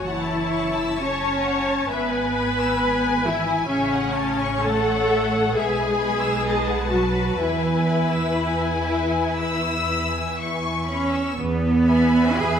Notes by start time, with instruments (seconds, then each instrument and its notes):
Already playing: violin section C#5
0.03 double bass section F#1, cello section E3, violin section F#5
0.07 viola section E4, violin section A5
0.25 violin section A5
0.54 violin section C#6
0.75 violin section E6
1.01 cello section C#4, viola section C#5, violin section C#6
1.22 violin section A5
1.45 violin section F#5
1.67 violin section A5
1.89 double bass section G#1, cello section B3, viola section B4, violin section E5 G#5
2.11 violin section G#5
2.36 violin section B5
2.58 violin section E6
2.80 violin section B5
3.03 violin section G#5
3.25 cello section E3, viola section E4, violin section E5
3.49 violin section G#5
3.69 double bass section A1, cello section C#3, viola section C#4, violin section C#5 E5
3.94 violin section F#5
4.16 violin section A5
4.40 violin section C#6
4.63 cello section A3, viola section A4, violin section F#5 A5
4.87 violin section F#5
5.09 violin section E5
5.32 violin section F#5
5.55 double bass section B1, cello section G#3, viola section G#4, violin section B4 E5 G#5
5.79 violin section G#5
6.02 violin section B5
6.21 violin section E6
6.46 violin section D#5 A5
6.68 violin section F#5
6.92 cello section F#3, viola section F#4, violin section A5
7.14 violin section B5
7.40 double bass section E2, cello section E3, viola section E4, violin section E5 G#5
7.62 violin section G#5
7.88 violin section B5
8.11 violin section E6
8.36 violin section B5
8.42 violin section G#5
8.61 violin section G#5
8.86 violin section E5
9.11 violin section G#5
9.36 violin section B5
9.40 violin section E6
9.61 violin section E6
9.85 violin section B5
10.12 violin section G#5
10.34 violin section E5
10.41 violin section C#6
10.59 violin section G#5
10.86 cello section C#4, violin section B5
11.11 violin section E6
11.37 double bass section E2, cello section B3
11.86 viola section B4 E5, violin section G#5 B5
12.38 double bass section E2, cello section G#4